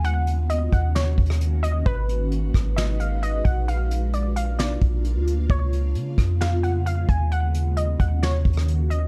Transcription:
Already playing: D#2
0.04 D#3 A#3 C#4 F#4 F#5, closed hi-hat
0.27 closed hi-hat
0.49 D#5, closed hi-hat
0.72 D#2 F#5, kick, closed hi-hat
0.95 C#5, snare, closed hi-hat
1.18 D#2, kick, closed hi-hat
1.25 closed hi-hat
1.30 cross-stick, closed hi-hat
1.41 closed hi-hat
1.63 D#5, closed hi-hat
1.86 G#1 G#3 D#4 F#4 B4, kick, closed hi-hat
2.09 closed hi-hat
2.31 closed hi-hat
2.54 G#1, kick, cross-stick, closed hi-hat
2.76 D#5, snare, closed hi-hat
3.00 F5, closed hi-hat
3.23 D#5, closed hi-hat
3.45 A#1 F#5, kick, closed hi-hat
3.68 A#3 D4 F4 F5, closed hi-hat
3.91 closed hi-hat
4.13 D5, closed hi-hat
4.36 F5, closed hi-hat
4.59 D5, snare, closed hi-hat
4.82 A#1, kick, closed hi-hat
5.04 closed hi-hat
5.16 D2
5.27 closed hi-hat
5.50 C#2 C#3 G#3 B3 C#5, kick, closed hi-hat
5.73 closed hi-hat
5.95 C#3, closed hi-hat
6.18 F2, kick, cross-stick, closed hi-hat
6.41 F5, snare, closed hi-hat
6.63 F#5, closed hi-hat
6.86 F5, closed hi-hat
7.09 D#2 G#5, kick, closed hi-hat
7.32 D#3 A#3 C#4 F#4 F#5, closed hi-hat
7.54 closed hi-hat
7.77 D#5, closed hi-hat
8.00 D#2 F#5, kick, closed hi-hat
8.22 C#5, snare, closed hi-hat
8.45 D#2, kick, closed hi-hat
8.53 closed hi-hat
8.57 cross-stick, closed hi-hat
8.68 closed hi-hat
8.90 D#5, closed hi-hat

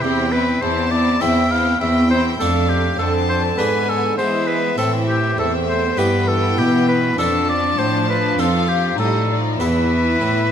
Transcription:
0.02 E2 C4 E4 G4 G5
0.32 C4 E4 B4
0.62 E2 C4 E4 C5 A5
0.91 C4 E4 D5
1.21 E2 C4 E4 E5 G5
1.51 C4 E4 F5
1.81 E2 C4 E4 E5 G5
2.10 C4 E4 C5
2.39 F2 A3 D4 F4 A4 F5
2.69 G4
2.99 F2 D3 C4 A4 A5
3.29 C5
3.58 G#2 B3 D4 E4 B4 G#5
3.89 A4
4.17 E3 G#3 B3 C5 E5
4.48 B4
4.78 A2 E3 C4 E4 A4
5.08 G4
5.38 E2 A3 C4 A4 E5
5.69 C5
5.97 G2 E3 B3 E4 G4 B4 G5
6.27 A4
6.58 B2 G4
6.88 B4
7.18 F2 F3 D4 F4 A4 A5
7.49 D5
7.78 A2 C5
8.09 B4
8.38 F2 D#4 F4 A4 F5
8.68 G4
8.98 A2 G3 D#4 A4 D#5
9.29 F3 D5
9.58 E2 E3 B3 E4 A4 B4 E5
10.21 A2

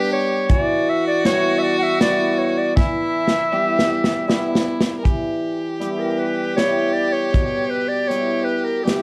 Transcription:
Already playing: G3 B3 D4 G4
0.13 C#5
0.49 E3 F#4 D5, kick, closed hi-hat
0.89 E5
1.07 D5
1.24 G3 B3 E4 C#5, snare, closed hi-hat
1.59 E5
1.63 D5
1.79 E5 F#5
2.00 G3 B3 E4 D5, snare, closed hi-hat
2.38 C#5
2.58 D5
2.76 E3 E4 E5, kick, snare
3.28 snare
3.51 G3 B3 E4 G4
3.79 snare
4.04 snare
4.28 G3 B3 E4, snare
4.55 snare
4.81 snare
4.98 A#4
5.02 E3 G4, kick, closed hi-hat
5.79 G3 B3 E4 G4, closed hi-hat
5.99 A#4
6.18 B4
6.57 G3 B3 E4 C#5, snare, closed hi-hat
6.93 D5
7.12 C#5
7.33 B2, kick, closed hi-hat
7.70 B4
7.88 D5
8.08 G3 B3 E4 C#5, closed hi-hat
8.44 B4
8.65 A#4
8.84 G3 B3 E4 G4
8.88 snare, closed hi-hat

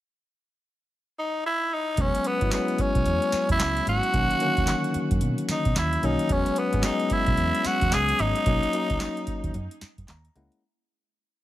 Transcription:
1.19 D#4
1.46 E4
1.73 D#4
1.97 E1 F#3 G#3 B3 C#4, kick, closed hi-hat
2.15 closed hi-hat
2.24 B3, closed hi-hat
2.41 G#1 F#3 G#3 B3 E4, kick, closed hi-hat
2.52 F#3 G#3 B3 C#4, snare, clap, closed hi-hat
2.68 closed hi-hat
2.78 C#4, muted fingered electric bass stroke, kick, closed hi-hat
2.95 B1, kick, closed hi-hat
3.05 E2, closed hi-hat
3.22 closed hi-hat
3.32 muted fingered electric bass stroke, snare, closed hi-hat
3.49 E2 E4, kick, closed hi-hat
3.60 C#2, snare, clap, closed hi-hat
3.77 closed hi-hat
3.87 G#1 F#4, closed hi-hat
4.03 closed hi-hat
4.14 B1 D#3 F#3 A#3 C#4, kick, closed hi-hat
4.31 closed hi-hat
4.40 D3 F#3 A#3 C#4, closed hi-hat
4.47 D#3
4.57 D#2, kick, closed hi-hat
4.67 snare, clap, closed hi-hat
4.84 closed hi-hat
4.94 muted fingered electric bass stroke, closed hi-hat
5.11 F#2, kick, closed hi-hat
5.21 B2, closed hi-hat
5.38 closed hi-hat
5.49 D#4, muted fingered electric bass stroke, snare, closed hi-hat
5.65 B2, kick, closed hi-hat
5.76 D#2 E4, snare, clap, closed hi-hat
5.93 closed hi-hat
6.03 B1 D#3 F#3 A#3 C#4 D#4, closed hi-hat
6.19 closed hi-hat
6.29 E1 F#3 G#3 B3 C#4, kick, closed hi-hat
6.46 closed hi-hat
6.56 B3, closed hi-hat
6.73 G#1 F#3 G#3 B3 C#4, kick, closed hi-hat
6.83 F#3 G#3 B3 C#4 D#4, snare, clap, closed hi-hat
7.00 closed hi-hat
7.10 E4, muted fingered electric bass stroke, kick, closed hi-hat
7.26 B1, kick, closed hi-hat
7.37 E2, closed hi-hat
7.55 closed hi-hat
7.64 F#4, muted fingered electric bass stroke, snare, closed hi-hat
7.81 E2, kick, closed hi-hat
7.92 C#2 G#4, snare, clap, closed hi-hat
8.09 closed hi-hat
8.19 G#1 D#4, closed hi-hat
8.35 closed hi-hat
8.46 B1 F#3 A#3 C#4 D#4, kick, closed hi-hat
8.63 closed hi-hat
8.73 F#3 A#3 C#4 D#4, closed hi-hat
8.90 C#2, kick, closed hi-hat
9.00 snare, clap, closed hi-hat
9.17 closed hi-hat
9.27 muted fingered electric bass stroke, kick, closed hi-hat
9.44 D#2, kick, closed hi-hat
9.54 F#2, closed hi-hat
9.71 closed hi-hat
9.81 muted fingered electric bass stroke, snare, closed hi-hat
9.98 F#2, kick, closed hi-hat
10.08 D#2 A#5, snare, clap, closed hi-hat
10.25 closed hi-hat
10.36 C#2 G#3 A#3 C#4 E4 F#5, closed hi-hat
10.52 closed hi-hat

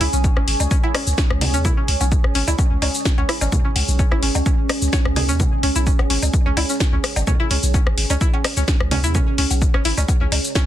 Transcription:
Already playing: C#4 G#4 G#5
0.01 C#2 E4, open hi-hat
0.13 B1 C#4, shaker
0.24 kick, cowbell, shaker
0.37 G#1 C#4, cross-stick
0.48 G#1, open hi-hat
0.60 C#2, low woodblock, shaker
0.71 C#4, kick, shaker
0.83 E4, cowbell
0.94 C#4, cross-stick, open hi-hat, low woodblock
1.07 C#2, shaker
1.18 C#4, kick, snare, shaker
1.30 C#2, cross-stick
1.41 open hi-hat, cowbell, low conga, low woodblock
1.54 E2 C#4, shaker
1.65 E4, kick, low conga, shaker
1.77 C#4
1.88 C#2, open hi-hat
2.01 B1 C#4, cowbell, shaker
2.12 kick, shaker
2.24 G#1, cross-stick
2.35 G#1 C#4, open hi-hat
2.48 C#2 E4, low woodblock, shaker
2.59 C#4, kick, cowbell, shaker
2.71 C#2
2.82 C#2 C#4, open hi-hat, low woodblock
2.94 shaker
3.05 kick, snare, shaker
3.18 C#2 C#4, cowbell
3.29 E4, cross-stick, open hi-hat
3.41 G#1 C#4, low woodblock, shaker
3.52 kick, low conga, shaker
3.65 C#4
3.76 C#2, open hi-hat, cowbell
3.88 B1, shaker
3.99 C#4, kick, shaker
4.11 G#1 E4, cross-stick
4.23 G#1 C#4, open hi-hat
4.35 C#2, cowbell, low woodblock, shaker
4.46 C#4, kick, shaker
4.69 cross-stick, open hi-hat, low woodblock
4.82 C#2, shaker
4.93 C#5, kick, snare, cowbell, shaker
5.05 C#2, cross-stick
5.16 G#4, open hi-hat, low conga, low woodblock
5.29 E2 C#4, shaker
5.40 kick, cowbell, low conga, shaker
5.63 C#2 C#4, open hi-hat
5.76 B1 E4, shaker
5.87 C#4, kick, shaker
5.99 G#1, cross-stick, cowbell
6.10 G#1 C#4, open hi-hat
6.23 C#2, low woodblock, shaker
6.33 kick, shaker
6.46 C#2 C#4
6.57 C#2 E4, open hi-hat, cowbell, low woodblock
6.69 C#4, shaker
6.80 kick, snare, shaker
6.93 C#2 C#4
7.04 cross-stick, open hi-hat
7.16 G#1, cowbell, low woodblock, shaker
7.27 C#4, kick, low conga, shaker
7.40 E4
7.51 C#2 C#4, open hi-hat
7.63 B1, shaker
7.74 C#4, kick, cowbell, shaker
7.87 G#1, cross-stick
7.98 G#1, open hi-hat
8.10 C#2 C#4, low woodblock, shaker
8.21 E4, kick, shaker
8.34 C#4, cowbell
8.44 cross-stick, open hi-hat, low woodblock
8.57 C#2 C#4, shaker
8.68 kick, snare, shaker
8.80 C#2, cross-stick
8.91 C#4, open hi-hat, cowbell, low conga, low woodblock
9.04 E2 E4, shaker
9.15 C#4, kick, low conga, shaker
9.38 C#2 C#4, open hi-hat
9.51 B1, cowbell, shaker
9.62 kick, shaker
9.74 G#1 C#4, cross-stick
9.85 G#1 E4, open hi-hat
9.98 C#2 C#4, low woodblock, shaker
10.08 kick, cowbell, shaker
10.21 C#2 C#4
10.32 C#2, open hi-hat, low woodblock
10.44 shaker
10.55 C#4, kick, snare, shaker

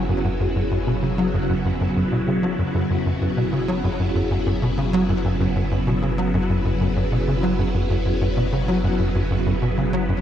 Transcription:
Already playing: F#1 C#3 F#3 B3 E4 G#4
0.09 F#2
0.24 F#2
0.40 F#2
0.56 F#2
0.71 F#2
0.87 B2
1.02 C#3
1.18 F#3
1.34 F#2
1.49 F#2
1.65 F#2
1.81 F#2
1.96 F#2
2.12 B2
2.27 C#3
2.43 F#3
2.59 F#1 F#2
2.74 F#2
2.90 F#2
3.06 F#2
3.21 F#2
3.37 B2
3.53 C#3
3.68 F#3
3.84 F#2
3.99 F#2
4.15 F#2
4.31 F#2
4.46 F#2
4.62 B2
4.78 C#3
4.93 F#3
5.09 F#2
5.24 F#2
5.40 F#2
5.56 F#2
5.71 F#2
5.87 B2
6.02 C#3
6.18 F#3
6.34 F#2
6.49 F#2
6.65 F#2
6.81 F#2
6.96 F#2
7.12 B2
7.27 C#3
7.43 F#3
7.59 F#2
7.74 F#2
7.90 F#2
8.05 F#2
8.21 F#2
8.37 B2
8.52 C#3
8.68 F#3
8.84 F#2
8.99 F#2
9.15 F#2
9.31 F#2
9.46 F#2
9.62 B2
9.77 C#3
9.93 F#3
10.09 F#2

